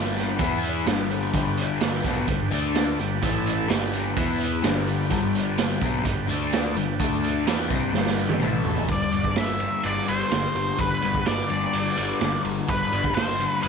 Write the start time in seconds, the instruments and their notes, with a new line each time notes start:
Already playing: picked electric bass G1, distorted electric guitar G2 D3 G3, transistor combo organ G3 D4 B4 G5
0.16 snare, closed hi-hat, tambourine
0.38 picked electric bass E2, distorted electric guitar E3 B3 E4, transistor combo organ E3 B3 E5, kick, closed hi-hat, tambourine
0.63 closed hi-hat, tambourine
0.86 picked electric bass G1, distorted electric guitar G2 D3 G3, transistor combo organ G3 D4 G5, snare, closed hi-hat, tambourine
1.11 closed hi-hat, tambourine
1.33 picked electric bass G1, distorted electric guitar G2 D3 G3, kick, closed hi-hat, tambourine
1.57 closed hi-hat, tambourine
1.81 snare, closed hi-hat, tambourine
2.04 picked electric bass B1, distorted electric guitar B2 F#3 B3, kick, snare, closed hi-hat, tambourine
2.28 picked electric bass G1, distorted electric guitar G2 D3, kick, closed hi-hat, tambourine
2.51 picked electric bass D2, distorted electric guitar D3 A3 D4, transistor combo organ A3 D4 D5 A5, closed hi-hat, tambourine
2.75 snare, closed hi-hat, tambourine
2.99 picked electric bass G1, distorted electric guitar G2 D3, transistor combo organ G3 B4 G5, closed hi-hat, tambourine
3.22 picked electric bass A1, distorted electric guitar A2 E3 A3, transistor combo organ E3 E4 A4 A5, kick, closed hi-hat, tambourine
3.46 closed hi-hat, tambourine
3.69 picked electric bass G1, distorted electric guitar G2 D3 G3, transistor combo organ G3 D4 B4 G5, snare, closed hi-hat, tambourine
3.93 closed hi-hat, tambourine
4.16 picked electric bass E2, distorted electric guitar E3 B3 E4, transistor combo organ E3 B3 E5, kick, closed hi-hat, tambourine
4.40 closed hi-hat, tambourine
4.63 picked electric bass G1, distorted electric guitar G2 D3 G3, transistor combo organ G3 D4 G5, snare, closed hi-hat, tambourine
4.87 closed hi-hat, tambourine
5.10 picked electric bass G1, distorted electric guitar G2 D3 G3, kick, closed hi-hat, tambourine
5.35 closed hi-hat, tambourine
5.58 snare, closed hi-hat, tambourine
5.81 picked electric bass B1, distorted electric guitar B2 F#3 B3, kick, closed hi-hat, tambourine
6.05 picked electric bass G1, distorted electric guitar G2 D3, kick, closed hi-hat, tambourine
6.27 picked electric bass D2, distorted electric guitar D3 A3 D4, transistor combo organ A3 D5 A5, closed hi-hat, tambourine
6.53 snare, closed hi-hat, tambourine
6.75 picked electric bass G1, distorted electric guitar G2 D3, transistor combo organ G3 B4 G5, closed hi-hat, tambourine
6.99 picked electric bass D2, distorted electric guitar D3 A3 D4, transistor combo organ A3 D5 A5, kick, closed hi-hat, tambourine
7.23 closed hi-hat, tambourine
7.46 picked electric bass E2, distorted electric guitar E3 B3 E4, transistor combo organ G3 B4 G5, snare, closed hi-hat, tambourine
7.70 picked electric bass C2, distorted electric guitar C3 G3 C4, kick, closed hi-hat, tambourine
7.93 picked electric bass G1, distorted electric guitar G2 D3 G3, snare, tambourine
8.06 snare
8.18 tambourine
8.29 high tom
8.40 picked electric bass A1, distorted electric guitar A2 E3 A3, transistor combo organ E3 E4 A4 A5, mid tom, tambourine
8.65 floor tom, tambourine
8.76 floor tom
8.88 picked electric bass G1, distorted electric guitar G2 D3 G3, kick, ride
8.92 lead electric guitar D5
9.12 picked electric bass G1, distorted electric guitar D3 G3, ride
9.24 kick
9.35 picked electric bass G1, distorted electric guitar G2 D3 G3, lead electric guitar E5, snare, ride
9.59 distorted electric guitar D3 G3, ride
9.83 picked electric bass G1, lead electric guitar D5, ride
10.07 picked electric bass G1, distorted electric guitar D3 G3, lead electric guitar C5, ride
10.30 picked electric bass G1, distorted electric guitar G2 D3 G3, snare, ride
10.45 snare
10.55 picked electric bass G1, ride
10.78 picked electric bass G1, distorted electric guitar G2 D3 G3, lead electric guitar B4, kick, ride
11.02 picked electric bass G1, distorted electric guitar D3 G3, ride
11.14 kick
11.26 picked electric bass G1, distorted electric guitar G2 D3 G3, lead electric guitar D5, snare, ride
11.49 picked electric bass G1, distorted electric guitar D3 G3, ride
11.73 picked electric bass G1, ride
11.96 picked electric bass G1, distorted electric guitar D3 G3, ride
12.20 picked electric bass G1, distorted electric guitar G2 D3 G3, snare, ride
12.45 picked electric bass G1, ride
12.67 picked electric bass G1, distorted electric guitar G2 D3 G3, lead electric guitar B4, kick, ride
12.91 picked electric bass G1, distorted electric guitar D3 G3, ride
13.04 kick
13.15 picked electric bass G1, distorted electric guitar G2 D3 G3, lead electric guitar C5, snare, ride
13.38 distorted electric guitar D3 G3, ride
13.48 lead electric guitar B4
13.63 picked electric bass G1, lead electric guitar B4, ride